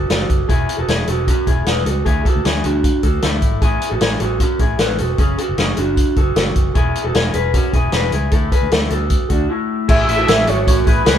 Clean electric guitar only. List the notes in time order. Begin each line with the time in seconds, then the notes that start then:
0.10 F#4 A4
0.49 E4 G#4
0.78 F#4 A4
0.88 E4 G#4
1.08 F#4 A4
1.28 C#4 F#4
1.47 E4 G#4
1.67 G#4 B4
1.86 F#4 A4
2.06 E4 G#4
2.25 F#4 A4
2.45 E4 G#4
2.64 D4 F#4
3.03 F#4 A4
3.23 E4 A4
3.62 E4 G#4
3.91 F#4 A4
4.01 E4 G#4
4.20 F#4 A4
4.40 C#4 F#4
4.60 E4 G#4
4.80 G#4 B4
4.99 F#4 A4
5.19 C#4 G#4
5.39 F#4 A4
5.58 C#4 G#4
5.78 D4 F#4
6.17 F#4 A4
6.37 F#4 A4
6.75 E4 G#4
7.05 F#4 A4
7.14 E4 G#4
7.34 G#4 B4
7.54 C#4 F#4
7.73 E4 G#4
7.93 G#4 B4
8.13 E4 G#4
8.32 E4 A4
8.52 G#4 B4
8.72 E4 A4
8.91 F#4 A4
9.30 D4 F#4
9.49 A3 E4
9.88 E4 G#4
10.17 F#4 A4
10.27 E4 G#4
10.47 F#4 A4
10.67 C#4 F#4
10.86 E4 G#4
11.06 G#4 B4